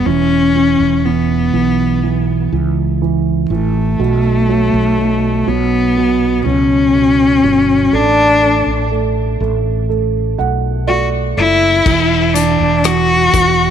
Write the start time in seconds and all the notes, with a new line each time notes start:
0.06 E1 E3 C#4
0.55 E3
0.80 E1
1.05 E3 B3
1.53 B1 E3
2.03 E3
2.52 C#2 E3
3.02 E3
3.50 A1 E3 A3
3.99 B1 B2
4.49 F#3
4.74 B1
4.98 B2
5.47 B1 F#3 B3
5.97 B2
6.46 C#2 F#3 C#4
6.95 B2
7.44 G1 F#3
7.93 A1 A3 D4
8.42 A3
8.66 A1
8.91 A3
9.40 A1 A3
9.89 A3
10.38 B1 A3 F#5
10.87 A3 F#4 D5
11.36 F#1 A3 E4
11.85 E1 E3, kick, crash
12.35 E3 D4, closed hi-hat
12.60 E1
12.84 E3 F#4, cross-stick, closed hi-hat
13.33 E1 E3, kick, closed hi-hat